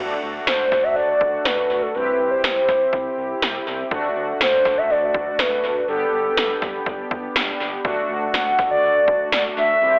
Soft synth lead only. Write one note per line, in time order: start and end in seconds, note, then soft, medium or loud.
0.47 0.85 C5 loud
0.84 0.95 E5 loud
0.96 1.46 D5 loud
1.45 1.83 B4 loud
1.82 1.96 A4 medium
1.94 2.30 B4 loud
2.31 2.43 C5 medium
2.43 3.63 C5 loud
4.41 4.79 C5 loud
4.78 4.92 E5 loud
4.90 5.41 D5 loud
5.39 5.88 B4 loud
5.89 7.32 A4 medium
8.34 8.68 F#5 loud
8.71 9.28 D5 loud
9.33 9.44 D5 medium
9.57 9.99 E5 loud